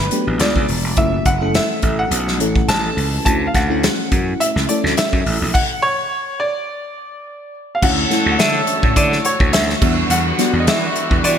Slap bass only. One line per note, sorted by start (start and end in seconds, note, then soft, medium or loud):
0.27 0.37 A1 medium
0.40 0.52 C#2 loud
0.55 0.65 C#2 medium
0.69 0.84 E1 medium
0.84 0.94 F1 medium
0.97 1.18 F#1 loud
1.26 1.58 F#1 medium
1.83 2.04 A1 medium
2.11 2.40 B1 medium
2.40 2.61 A1 medium
2.68 2.89 A1 loud
2.97 3.18 C#2 medium
3.26 3.47 D2 loud
3.55 3.87 D2 loud
4.12 4.33 F#2 medium
4.56 4.65 C#2 medium
4.84 4.94 D2 medium
5.13 5.22 F#2 medium
5.26 5.37 A1 medium
5.42 5.51 A#1 medium
7.83 8.03 D2 loud
8.26 8.36 D2 medium
8.39 8.60 D3 loud
8.83 8.93 A2 medium
8.96 9.17 D3 loud
9.40 9.50 D2 medium
9.53 9.74 D2 medium
9.81 10.02 E2 loud
10.10 10.31 E2 loud
10.53 10.68 E2 medium
10.67 10.88 E3 loud
11.11 11.21 E2 medium
11.24 11.38 E3 loud